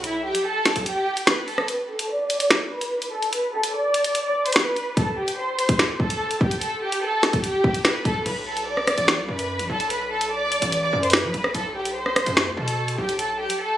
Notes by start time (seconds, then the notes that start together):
Already playing: B1
0.04 E4 E5, closed hi-hat
0.24 G4 G5
0.35 closed hi-hat
0.46 A4 A5
0.65 snare, closed hi-hat
0.76 B1, closed hi-hat
0.86 G4 G5, closed hi-hat
1.17 closed hi-hat
1.27 B4 B5, finger snap, snare, closed hi-hat
1.48 A4 A5, open hi-hat
1.58 cross-stick
1.68 B4 B5, closed hi-hat
1.89 A4 A5
1.99 closed hi-hat
2.09 D5 D6
2.30 closed hi-hat
2.40 closed hi-hat
2.51 finger snap, snare
2.71 B4 B5
2.81 closed hi-hat
3.02 closed hi-hat
3.12 A4 A5
3.22 closed hi-hat
3.33 B4 B5, closed hi-hat
3.53 A4 A5
3.63 closed hi-hat
3.74 D5 D6
3.94 closed hi-hat
4.04 closed hi-hat
4.15 closed hi-hat
4.25 D5 D6
4.46 C5 C6, closed hi-hat
4.52 B4 B5, finger snap, snare, closed hi-hat
4.59 closed hi-hat
4.76 closed hi-hat
4.97 A4 A5, kick, closed hi-hat
5.17 G4 G5
5.28 closed hi-hat
5.38 C5 C6
5.59 closed hi-hat
5.69 kick, closed hi-hat
5.79 finger snap, snare
6.00 A4 A5, kick
6.10 closed hi-hat
6.31 closed hi-hat
6.40 G4 G5, kick
6.51 closed hi-hat
6.61 A4 A5, closed hi-hat
6.82 G4 G5
6.92 closed hi-hat
7.03 A4 A5
7.23 snare, closed hi-hat
7.33 kick, closed hi-hat
7.43 G4 G5, closed hi-hat
7.64 kick
7.74 closed hi-hat
7.85 B4 B5, finger snap, snare, closed hi-hat
8.05 A4 A5, kick, closed hi-hat
8.25 B1 B4 B5, closed hi-hat, crash
8.47 A4 A5
8.57 closed hi-hat
8.67 D5 D6
8.77 cross-stick
8.87 cross-stick, closed hi-hat
8.98 A1, closed hi-hat
9.08 finger snap, snare
9.18 C2
9.29 F#2 B4 B5
9.39 closed hi-hat
9.59 A1, closed hi-hat
9.70 B1 A4 A5
9.80 closed hi-hat
9.90 B4 B5, closed hi-hat
10.11 A4 A5
10.21 closed hi-hat
10.31 D5 D6
10.52 closed hi-hat
10.62 A1, closed hi-hat
10.72 closed hi-hat
10.83 D5 D6
10.93 F#2
11.03 C5 C6, closed hi-hat
11.10 B4 B5, finger snap, snare, closed hi-hat
11.17 closed hi-hat
11.24 F#3
11.34 B1, closed hi-hat
11.44 cross-stick
11.55 B1 A4 A5, closed hi-hat
11.75 G4 G5
11.85 closed hi-hat
11.96 C5 C6
12.06 cross-stick
12.16 cross-stick, closed hi-hat
12.26 F#2, closed hi-hat
12.37 finger snap, snare
12.47 D2
12.57 B2 A4 A5
12.68 closed hi-hat
12.88 closed hi-hat
12.98 B1 G4 G5
13.09 closed hi-hat
13.19 A4 A5, closed hi-hat
13.40 G4 G5
13.50 closed hi-hat
13.61 A4 A5